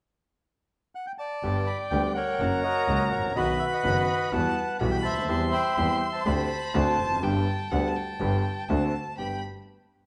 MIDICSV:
0, 0, Header, 1, 5, 480
1, 0, Start_track
1, 0, Key_signature, 1, "major"
1, 0, Tempo, 484262
1, 1422, Time_signature, 4, 2, 24, 8
1, 9972, End_track
2, 0, Start_track
2, 0, Title_t, "Violin"
2, 0, Program_c, 0, 40
2, 1427, Note_on_c, 0, 79, 62
2, 2384, Note_on_c, 0, 82, 82
2, 2399, Note_off_c, 0, 79, 0
2, 3338, Note_on_c, 0, 83, 78
2, 3353, Note_off_c, 0, 82, 0
2, 4292, Note_off_c, 0, 83, 0
2, 4301, Note_on_c, 0, 81, 79
2, 4740, Note_off_c, 0, 81, 0
2, 4769, Note_on_c, 0, 83, 86
2, 5213, Note_off_c, 0, 83, 0
2, 5247, Note_on_c, 0, 84, 83
2, 6208, Note_on_c, 0, 83, 91
2, 6223, Note_off_c, 0, 84, 0
2, 6683, Note_on_c, 0, 81, 92
2, 6698, Note_off_c, 0, 83, 0
2, 7165, Note_on_c, 0, 79, 74
2, 7180, Note_off_c, 0, 81, 0
2, 7643, Note_on_c, 0, 78, 73
2, 7658, Note_off_c, 0, 79, 0
2, 7813, Note_on_c, 0, 81, 59
2, 7828, Note_off_c, 0, 78, 0
2, 7885, Note_on_c, 0, 79, 67
2, 7900, Note_off_c, 0, 81, 0
2, 8611, Note_on_c, 0, 81, 62
2, 8626, Note_off_c, 0, 79, 0
2, 9093, Note_off_c, 0, 81, 0
2, 9099, Note_on_c, 0, 83, 55
2, 9324, Note_off_c, 0, 83, 0
2, 9972, End_track
3, 0, Start_track
3, 0, Title_t, "Bandoneon"
3, 0, Program_c, 1, 23
3, 944, Note_on_c, 1, 78, 70
3, 1054, Note_off_c, 1, 78, 0
3, 1057, Note_on_c, 1, 79, 77
3, 1112, Note_off_c, 1, 79, 0
3, 1172, Note_on_c, 1, 81, 70
3, 1185, Note_on_c, 1, 74, 54
3, 1653, Note_on_c, 1, 83, 78
3, 1672, Note_off_c, 1, 81, 0
3, 1763, Note_off_c, 1, 83, 0
3, 1888, Note_on_c, 1, 79, 78
3, 2000, Note_off_c, 1, 79, 0
3, 2105, Note_off_c, 1, 74, 0
3, 2127, Note_on_c, 1, 78, 73
3, 2145, Note_on_c, 1, 70, 56
3, 2145, Note_on_c, 1, 73, 58
3, 2580, Note_off_c, 1, 78, 0
3, 2606, Note_on_c, 1, 75, 78
3, 2610, Note_off_c, 1, 70, 0
3, 2622, Note_on_c, 1, 66, 63
3, 2625, Note_on_c, 1, 70, 60
3, 3059, Note_off_c, 1, 75, 0
3, 3062, Note_off_c, 1, 73, 0
3, 3085, Note_on_c, 1, 73, 61
3, 3300, Note_off_c, 1, 66, 0
3, 3301, Note_off_c, 1, 70, 0
3, 3315, Note_off_c, 1, 73, 0
3, 3325, Note_on_c, 1, 75, 81
3, 3343, Note_on_c, 1, 66, 64
3, 3343, Note_on_c, 1, 71, 62
3, 3554, Note_off_c, 1, 75, 0
3, 3559, Note_on_c, 1, 76, 66
3, 3617, Note_off_c, 1, 76, 0
3, 3689, Note_on_c, 1, 78, 72
3, 3694, Note_off_c, 1, 71, 0
3, 3708, Note_on_c, 1, 75, 49
3, 3709, Note_on_c, 1, 71, 55
3, 4255, Note_off_c, 1, 66, 0
3, 4259, Note_off_c, 1, 75, 0
3, 4728, Note_off_c, 1, 78, 0
3, 4735, Note_off_c, 1, 71, 0
3, 4743, Note_on_c, 1, 78, 69
3, 4802, Note_off_c, 1, 78, 0
3, 4865, Note_on_c, 1, 79, 75
3, 4924, Note_off_c, 1, 79, 0
3, 4981, Note_on_c, 1, 81, 77
3, 5002, Note_on_c, 1, 72, 60
3, 5006, Note_on_c, 1, 76, 51
3, 5438, Note_off_c, 1, 81, 0
3, 5473, Note_on_c, 1, 83, 82
3, 5478, Note_off_c, 1, 76, 0
3, 5493, Note_on_c, 1, 76, 60
3, 5493, Note_on_c, 1, 79, 54
3, 5923, Note_off_c, 1, 72, 0
3, 5924, Note_off_c, 1, 83, 0
3, 5939, Note_off_c, 1, 79, 0
3, 5954, Note_on_c, 1, 79, 67
3, 6011, Note_off_c, 1, 79, 0
3, 6072, Note_on_c, 1, 81, 77
3, 6093, Note_on_c, 1, 72, 49
3, 6169, Note_off_c, 1, 76, 0
3, 7130, Note_off_c, 1, 72, 0
3, 8571, Note_off_c, 1, 81, 0
3, 9099, Note_on_c, 1, 79, 73
3, 9324, Note_off_c, 1, 79, 0
3, 9972, End_track
4, 0, Start_track
4, 0, Title_t, "Grand piano"
4, 0, Program_c, 2, 0
4, 1422, Note_on_c, 2, 50, 53
4, 1423, Note_on_c, 2, 43, 66
4, 1423, Note_on_c, 2, 55, 54
4, 1424, Note_on_c, 2, 67, 62
4, 1425, Note_on_c, 2, 31, 62
4, 1425, Note_on_c, 2, 59, 47
4, 1624, Note_off_c, 2, 43, 0
4, 1624, Note_off_c, 2, 50, 0
4, 1625, Note_off_c, 2, 55, 0
4, 1625, Note_off_c, 2, 59, 0
4, 1625, Note_off_c, 2, 67, 0
4, 1626, Note_off_c, 2, 31, 0
4, 1901, Note_on_c, 2, 50, 67
4, 1902, Note_on_c, 2, 38, 65
4, 1902, Note_on_c, 2, 55, 56
4, 1902, Note_on_c, 2, 59, 53
4, 1905, Note_on_c, 2, 67, 65
4, 2104, Note_off_c, 2, 38, 0
4, 2104, Note_off_c, 2, 55, 0
4, 2104, Note_off_c, 2, 59, 0
4, 2105, Note_off_c, 2, 50, 0
4, 2106, Note_off_c, 2, 67, 0
4, 2381, Note_on_c, 2, 49, 66
4, 2382, Note_on_c, 2, 42, 69
4, 2383, Note_on_c, 2, 54, 70
4, 2385, Note_on_c, 2, 58, 55
4, 2386, Note_on_c, 2, 66, 62
4, 2583, Note_off_c, 2, 49, 0
4, 2584, Note_off_c, 2, 42, 0
4, 2585, Note_off_c, 2, 58, 0
4, 2586, Note_off_c, 2, 54, 0
4, 2586, Note_off_c, 2, 66, 0
4, 2852, Note_on_c, 2, 49, 79
4, 2852, Note_on_c, 2, 54, 61
4, 2856, Note_on_c, 2, 58, 60
4, 2858, Note_on_c, 2, 37, 76
4, 2858, Note_on_c, 2, 66, 71
4, 3058, Note_off_c, 2, 54, 0
4, 3060, Note_off_c, 2, 58, 0
4, 3061, Note_off_c, 2, 37, 0
4, 3061, Note_off_c, 2, 49, 0
4, 3061, Note_off_c, 2, 66, 0
4, 3151, Note_on_c, 2, 32, 47
4, 3211, Note_on_c, 2, 33, 39
4, 3216, Note_off_c, 2, 32, 0
4, 3266, Note_on_c, 2, 34, 47
4, 3275, Note_off_c, 2, 33, 0
4, 3326, Note_on_c, 2, 35, 65
4, 3327, Note_on_c, 2, 51, 56
4, 3328, Note_on_c, 2, 47, 74
4, 3329, Note_on_c, 2, 54, 49
4, 3329, Note_on_c, 2, 59, 53
4, 3331, Note_on_c, 2, 66, 69
4, 3333, Note_off_c, 2, 34, 0
4, 3533, Note_off_c, 2, 35, 0
4, 3534, Note_off_c, 2, 47, 0
4, 3534, Note_off_c, 2, 51, 0
4, 3535, Note_off_c, 2, 54, 0
4, 3535, Note_off_c, 2, 59, 0
4, 3536, Note_off_c, 2, 66, 0
4, 3811, Note_on_c, 2, 51, 62
4, 3811, Note_on_c, 2, 54, 51
4, 3812, Note_on_c, 2, 42, 70
4, 3814, Note_on_c, 2, 59, 58
4, 3816, Note_on_c, 2, 30, 67
4, 3817, Note_on_c, 2, 66, 61
4, 4014, Note_off_c, 2, 51, 0
4, 4014, Note_off_c, 2, 54, 0
4, 4015, Note_off_c, 2, 42, 0
4, 4016, Note_off_c, 2, 59, 0
4, 4017, Note_off_c, 2, 30, 0
4, 4018, Note_off_c, 2, 66, 0
4, 4283, Note_on_c, 2, 40, 77
4, 4283, Note_on_c, 2, 52, 67
4, 4284, Note_on_c, 2, 59, 56
4, 4286, Note_on_c, 2, 55, 54
4, 4286, Note_on_c, 2, 66, 73
4, 4488, Note_off_c, 2, 40, 0
4, 4488, Note_off_c, 2, 59, 0
4, 4489, Note_off_c, 2, 52, 0
4, 4489, Note_off_c, 2, 55, 0
4, 4489, Note_off_c, 2, 66, 0
4, 4762, Note_on_c, 2, 52, 70
4, 4765, Note_on_c, 2, 35, 80
4, 4765, Note_on_c, 2, 55, 65
4, 4766, Note_on_c, 2, 47, 82
4, 4766, Note_on_c, 2, 59, 58
4, 4766, Note_on_c, 2, 66, 78
4, 4966, Note_off_c, 2, 52, 0
4, 4967, Note_off_c, 2, 35, 0
4, 4967, Note_off_c, 2, 55, 0
4, 4968, Note_off_c, 2, 47, 0
4, 4968, Note_off_c, 2, 59, 0
4, 4968, Note_off_c, 2, 66, 0
4, 5064, Note_on_c, 2, 37, 43
4, 5125, Note_off_c, 2, 37, 0
4, 5128, Note_on_c, 2, 38, 50
4, 5184, Note_on_c, 2, 39, 57
4, 5187, Note_off_c, 2, 38, 0
4, 5243, Note_on_c, 2, 52, 73
4, 5245, Note_off_c, 2, 39, 0
4, 5245, Note_on_c, 2, 55, 51
4, 5246, Note_on_c, 2, 40, 70
4, 5247, Note_on_c, 2, 60, 58
4, 5250, Note_on_c, 2, 67, 66
4, 5447, Note_off_c, 2, 40, 0
4, 5447, Note_off_c, 2, 55, 0
4, 5448, Note_off_c, 2, 60, 0
4, 5449, Note_off_c, 2, 52, 0
4, 5449, Note_off_c, 2, 67, 0
4, 5722, Note_on_c, 2, 52, 70
4, 5723, Note_on_c, 2, 55, 59
4, 5724, Note_on_c, 2, 40, 69
4, 5726, Note_on_c, 2, 67, 74
4, 5729, Note_on_c, 2, 60, 55
4, 5926, Note_off_c, 2, 40, 0
4, 5926, Note_off_c, 2, 55, 0
4, 5927, Note_off_c, 2, 52, 0
4, 5927, Note_off_c, 2, 67, 0
4, 5928, Note_off_c, 2, 60, 0
4, 6201, Note_on_c, 2, 50, 70
4, 6202, Note_on_c, 2, 57, 57
4, 6203, Note_on_c, 2, 38, 79
4, 6203, Note_on_c, 2, 67, 74
4, 6205, Note_on_c, 2, 60, 58
4, 6405, Note_off_c, 2, 57, 0
4, 6405, Note_off_c, 2, 67, 0
4, 6406, Note_off_c, 2, 38, 0
4, 6406, Note_off_c, 2, 50, 0
4, 6407, Note_off_c, 2, 60, 0
4, 6683, Note_on_c, 2, 50, 83
4, 6684, Note_on_c, 2, 60, 64
4, 6685, Note_on_c, 2, 38, 82
4, 6687, Note_on_c, 2, 57, 61
4, 6689, Note_on_c, 2, 66, 78
4, 6886, Note_off_c, 2, 60, 0
4, 6887, Note_off_c, 2, 38, 0
4, 6887, Note_off_c, 2, 50, 0
4, 6888, Note_off_c, 2, 57, 0
4, 6889, Note_off_c, 2, 66, 0
4, 6984, Note_on_c, 2, 40, 40
4, 7039, Note_on_c, 2, 41, 51
4, 7045, Note_off_c, 2, 40, 0
4, 7096, Note_on_c, 2, 42, 58
4, 7103, Note_off_c, 2, 41, 0
4, 7159, Note_on_c, 2, 50, 54
4, 7161, Note_off_c, 2, 42, 0
4, 7161, Note_on_c, 2, 43, 66
4, 7162, Note_on_c, 2, 55, 58
4, 7163, Note_on_c, 2, 31, 71
4, 7163, Note_on_c, 2, 59, 53
4, 7166, Note_on_c, 2, 67, 63
4, 7365, Note_off_c, 2, 50, 0
4, 7366, Note_off_c, 2, 43, 0
4, 7367, Note_off_c, 2, 31, 0
4, 7367, Note_off_c, 2, 55, 0
4, 7367, Note_off_c, 2, 59, 0
4, 7369, Note_off_c, 2, 67, 0
4, 7647, Note_on_c, 2, 50, 79
4, 7648, Note_on_c, 2, 38, 66
4, 7648, Note_on_c, 2, 55, 60
4, 7651, Note_on_c, 2, 59, 55
4, 7652, Note_on_c, 2, 67, 64
4, 7850, Note_off_c, 2, 38, 0
4, 7850, Note_off_c, 2, 50, 0
4, 7850, Note_off_c, 2, 55, 0
4, 7851, Note_off_c, 2, 59, 0
4, 7852, Note_off_c, 2, 67, 0
4, 8128, Note_on_c, 2, 50, 61
4, 8129, Note_on_c, 2, 59, 50
4, 8132, Note_on_c, 2, 31, 66
4, 8132, Note_on_c, 2, 43, 74
4, 8132, Note_on_c, 2, 55, 54
4, 8134, Note_on_c, 2, 67, 71
4, 8333, Note_off_c, 2, 50, 0
4, 8334, Note_off_c, 2, 59, 0
4, 8335, Note_off_c, 2, 31, 0
4, 8335, Note_off_c, 2, 43, 0
4, 8335, Note_off_c, 2, 55, 0
4, 8336, Note_off_c, 2, 67, 0
4, 8618, Note_on_c, 2, 50, 73
4, 8621, Note_on_c, 2, 38, 78
4, 8622, Note_on_c, 2, 57, 62
4, 8623, Note_on_c, 2, 66, 80
4, 8624, Note_on_c, 2, 60, 58
4, 8823, Note_off_c, 2, 38, 0
4, 8824, Note_off_c, 2, 50, 0
4, 8824, Note_off_c, 2, 57, 0
4, 8824, Note_off_c, 2, 66, 0
4, 8825, Note_off_c, 2, 60, 0
4, 9107, Note_on_c, 2, 59, 37
4, 9107, Note_on_c, 2, 62, 37
4, 9108, Note_on_c, 2, 43, 41
4, 9109, Note_on_c, 2, 67, 51
4, 9306, Note_off_c, 2, 43, 0
4, 9306, Note_off_c, 2, 59, 0
4, 9306, Note_off_c, 2, 62, 0
4, 9307, Note_off_c, 2, 67, 0
4, 9972, End_track
5, 0, Start_track
5, 0, Title_t, "Double bass"
5, 0, Program_c, 3, 43
5, 1420, Note_on_c, 3, 31, 64
5, 1623, Note_off_c, 3, 31, 0
5, 1900, Note_on_c, 3, 38, 74
5, 2104, Note_off_c, 3, 38, 0
5, 2376, Note_on_c, 3, 30, 71
5, 2580, Note_off_c, 3, 30, 0
5, 2853, Note_on_c, 3, 37, 68
5, 3058, Note_off_c, 3, 37, 0
5, 3095, Note_on_c, 3, 33, 44
5, 3326, Note_off_c, 3, 33, 0
5, 3332, Note_on_c, 3, 35, 74
5, 3536, Note_off_c, 3, 35, 0
5, 3810, Note_on_c, 3, 30, 79
5, 4014, Note_off_c, 3, 30, 0
5, 4288, Note_on_c, 3, 40, 73
5, 4490, Note_off_c, 3, 40, 0
5, 4765, Note_on_c, 3, 35, 75
5, 4967, Note_off_c, 3, 35, 0
5, 5000, Note_on_c, 3, 38, 44
5, 5243, Note_off_c, 3, 38, 0
5, 5247, Note_on_c, 3, 40, 73
5, 5448, Note_off_c, 3, 40, 0
5, 5725, Note_on_c, 3, 40, 78
5, 5927, Note_off_c, 3, 40, 0
5, 6203, Note_on_c, 3, 38, 84
5, 6406, Note_off_c, 3, 38, 0
5, 6688, Note_on_c, 3, 38, 82
5, 6888, Note_off_c, 3, 38, 0
5, 6927, Note_on_c, 3, 29, 48
5, 7160, Note_off_c, 3, 29, 0
5, 7166, Note_on_c, 3, 31, 83
5, 7368, Note_off_c, 3, 31, 0
5, 7654, Note_on_c, 3, 38, 81
5, 7853, Note_off_c, 3, 38, 0
5, 8131, Note_on_c, 3, 31, 82
5, 8335, Note_off_c, 3, 31, 0
5, 8619, Note_on_c, 3, 38, 76
5, 8822, Note_off_c, 3, 38, 0
5, 9102, Note_on_c, 3, 31, 41
5, 9303, Note_off_c, 3, 31, 0
5, 9972, End_track
0, 0, End_of_file